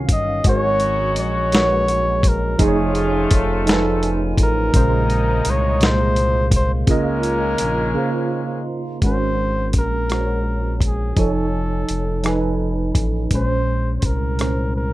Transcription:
Already playing: C2 D#3 F#3 C#4 F#4 F5
0.09 G1, kick, closed hi-hat
0.13 D#5
0.44 G#1 G#3 C#4 D#4 F#4, kick, closed hi-hat
0.48 A#4 C5 C#5
0.55 C#5
0.80 closed hi-hat
1.16 A#1, closed hi-hat
1.21 C#5
1.52 G#3 F#4 A#4, snare, closed hi-hat
1.56 B4
1.63 C#5
1.88 closed hi-hat
2.23 kick, closed hi-hat
2.28 A#4
2.57 F1 F3 A3 C#4 D#4 F4 G#4 G#5, kick, closed hi-hat
2.62 G#4 C5
2.68 C#5
2.95 closed hi-hat
3.31 F1, kick, closed hi-hat
3.36 A4
3.65 F3 D#4 A4 G#5, snare, closed hi-hat
3.69 A4 B4
4.03 closed hi-hat
4.38 A1, kick, closed hi-hat
4.43 A#4
4.72 A#1 A#2 C3 C#3 G#3 A#3 D#4 F4, kick, closed hi-hat
4.76 C5
5.10 closed hi-hat
5.45 C2, closed hi-hat
5.50 C#5
5.79 A#2 G#3 A#3, snare, closed hi-hat
5.83 C5
6.16 closed hi-hat
6.51 kick, closed hi-hat
6.56 C5
6.87 C#2 C#3 G#3 A#3 C#4 D#4 F4, kick, closed hi-hat
6.91 A#4 D#5
7.23 closed hi-hat
7.58 A#1, closed hi-hat
7.94 C#3 A#3 F4 C5
9.02 G#1 G#3 F#4 A#4 C5, kick, closed hi-hat
9.06 C#4
9.73 A#1, kick, closed hi-hat
9.78 A#4
10.10 G#3 F#4 A#4, cross-stick, closed hi-hat
10.14 C5
10.21 C#5
10.81 kick, closed hi-hat
10.86 G#4
11.16 F1 F3 D#4 A4 C#5 G#5, kick, closed hi-hat
11.21 A4
11.89 F1, closed hi-hat
12.23 F3 D#4 A4 G#5, cross-stick, closed hi-hat
12.27 B4
12.95 A1, kick, closed hi-hat
13.31 A#1 A#2 G#3 C#4, kick, closed hi-hat
13.35 C5
14.00 C2 C5, kick, closed hi-hat
14.06 A#4
14.37 A#2 G#3 C#4 C5, cross-stick, closed hi-hat
14.76 A#4

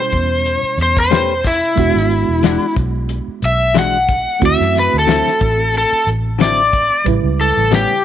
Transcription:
Already playing: B2 G3 C#4 E4 C5
0.13 E2, kick, closed hi-hat
0.46 closed hi-hat
0.63 muted fingered electric bass stroke
0.77 E2, closed hi-hat
0.82 C5
0.97 C5, kick
1.11 A3 C#4 G4 B4, snare, closed hi-hat
1.45 E4, kick, closed hi-hat
1.76 E1 G#3 B3 D4 F#4, kick, closed hi-hat
1.95 G#1, snare
2.11 closed hi-hat
2.28 E1
2.43 E3 G#3 D4 F#4, snare, closed hi-hat
2.76 B1, kick, closed hi-hat
3.09 closed hi-hat
3.28 muted fingered electric bass stroke
3.42 B1 E5, closed hi-hat
3.74 E3 G#3 D4 F#4, snare, closed hi-hat
3.79 F#5
4.09 kick, closed hi-hat
4.40 D2 A3 C4 E4 F#4, kick, closed hi-hat
4.46 E5
4.60 F#2, snare
4.75 snare, closed hi-hat
4.79 B4
4.94 D2
4.99 A4
5.07 D3 F#3 C4 E4, snare, closed hi-hat
5.28 snare
5.41 A1, kick, closed hi-hat
5.74 A4, closed hi-hat
5.92 muted fingered electric bass stroke
6.07 A1, closed hi-hat
6.39 D3 F#3 C4 E4 D5, snare, closed hi-hat
6.73 kick, closed hi-hat
7.04 A1 C#3 G3 E4 B4, kick, closed hi-hat
7.24 C#2
7.39 A4, closed hi-hat
7.57 A1
7.71 A2 G3 B3 C#4 G4, snare, closed hi-hat

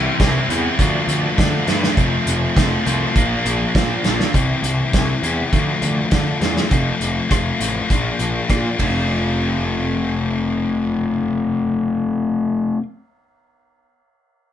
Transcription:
Already playing: E3 G3 C4 E4 G4
0.20 C2 E3 G3 C4 E4 G4, kick, snare, closed hi-hat
0.49 E2 E3 G3 C4 E4 G4, closed hi-hat
0.79 D2 F3 A3 D4 F4, kick, closed hi-hat
1.07 D2, closed hi-hat
1.37 D3 F3 A3 D4 F4, kick, snare, closed hi-hat
1.67 G2 F3 A3 D4 F4, snare, closed hi-hat
1.83 snare
1.97 F1 F3 A3 C4 F4, kick, closed hi-hat
2.26 F1, closed hi-hat
2.56 F1 F3 A3 C4 F4, kick, snare, closed hi-hat
2.85 C2 F3 A3 C4 F4, closed hi-hat
3.15 A#1 F3 A#3 D4 F4, kick, closed hi-hat
3.45 A#1, closed hi-hat
3.75 A#2 F3 A#3 D4 F4, kick, snare, closed hi-hat
4.04 A#1 F3 A#3 D4 F4, snare, closed hi-hat
4.20 snare
4.33 C2 E3 C4 E4 G4, kick, closed hi-hat
4.63 C2, closed hi-hat
4.93 C2 E3 C4 E4 G4, kick, snare, closed hi-hat
5.22 E2 E3 C4 E4 G4, closed hi-hat
5.52 D2 F3 A3 D4 F4, kick, closed hi-hat
5.82 D2, closed hi-hat
6.11 D3 F3 A3 D4 F4, kick, snare, closed hi-hat
6.41 E2 F3 A3 D4 F4, snare, closed hi-hat
6.57 snare
6.70 F1 F3 A3 C4 F4, kick, closed hi-hat
7.00 F1, closed hi-hat
7.30 F1 F3 A3 C4 F4, kick, cross-stick, closed hi-hat
7.60 A1 F3 A3 C4 F4, closed hi-hat
7.89 A#1 F3 A#3 D4 F4, kick, closed hi-hat
8.19 A#1, closed hi-hat
8.49 A#2 F3 A#3 D4 F4, kick, cross-stick, closed hi-hat
8.77 F1 A3 C4 F4, kick, ride

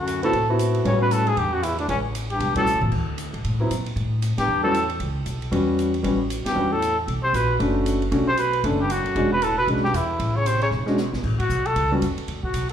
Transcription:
Already playing: D2 F#2
0.00 F#4
0.07 hi-hat pedal, ride
0.23 A2 B3 C4 E4 F#4 A4, ride
0.33 A2, kick, ride
0.49 B3 C4 E4 F#4
0.59 hi-hat pedal, ride
0.75 ride
0.85 A2 C#3 G3 B3 C#4 F#4 C#5, kick, ride
1.01 B2 B4
1.11 A2 A4, hi-hat pedal, ride
1.26 G#2 G#4, ride
1.36 E2 G2 G4, kick, ride
1.52 F#2 F#4
1.63 E2 E4, hi-hat pedal, ride
1.78 D2 D4, ride
1.88 A1 C#2 C#4, kick, ride
2.15 hi-hat pedal, ride
2.30 G2 G4, ride
2.40 E1, kick, ride
2.55 A2 G3 B3 C#4 F#4 A4, kick, ride
2.66 hi-hat pedal
2.74 C#2
2.81 A2, high tom
2.92 D2, kick, crash
3.18 hi-hat pedal, ride
3.33 A2, ride
3.44 A2, kick, ride
3.60 F#3 B3 C4 E4
3.71 A#2, hi-hat pedal, ride
3.86 ride
3.96 A2, kick, ride
4.22 hi-hat pedal, ride
4.38 G2 A#2 G4, snare, ride
4.48 E2
4.63 A2 G3 B3 C#4 F#4 A4
4.74 hi-hat pedal, ride
4.90 ride
5.00 C#2, kick, ride
5.26 B1, hi-hat pedal, ride
5.42 ride
5.51 E2 G3 B3 C#4 F#4, kick, ride
5.79 hi-hat pedal, ride
5.94 ride
6.03 A1 G3 B3 C#4 F#4, kick, ride
6.30 hi-hat pedal, ride
6.45 G2 G4, muted upright bass stroke, snare, ride
6.55 E2 G3 B3 C#4 F#4
6.72 A2 A4
6.82 hi-hat pedal, ride
7.08 B1, kick, ride
7.23 C3 C5
7.33 A#1 B2 B4, hi-hat pedal, ride
7.59 F#1 A3 C#4 D4 F#4, kick, ride
7.86 hi-hat pedal, ride
8.02 ride
8.11 B1 A3 C#4 D4 F#4, kick, ride
8.27 C3 C5
8.37 B2 B4, hi-hat pedal, ride
8.53 ride
8.64 F#1 A3 C#4 D4 A4, kick, ride
8.80 G2 G4
8.90 F#2 F#4, hi-hat pedal, ride
9.05 muted upright bass stroke, ride
9.15 E1 G#3 C#4 D4 F#4, kick, ride
9.31 B2 B4
9.42 A2 A4, hi-hat pedal, ride
9.58 B2 B4
9.68 B1 G#3 C#4 D4 F#4, kick, ride
9.77 snare
9.84 G2 G4, snare
9.93 E2 E4, hi-hat pedal, ride
10.19 A1, kick, ride
10.35 C#3 C#5
10.46 C3 C5, hi-hat pedal, ride
10.61 C#3 C#5, ride
10.71 E1, snare
10.86 G#3 C#4 D4 F#4, snare
10.98 snare, hi-hat pedal
11.13 A#1, snare
11.23 A1, kick, crash
11.39 F#4, kick, ride
11.49 B1, hi-hat pedal
11.66 A4, ride
11.76 C#2, kick, ride
11.92 G3 B3 C#4 F#4
12.02 F#2, kick, hi-hat pedal, ride
12.18 muted upright bass stroke, ride
12.28 D2, kick, ride
12.43 F#4, muted upright bass stroke, kick
12.54 B1, kick, hi-hat pedal, ride
12.69 ride

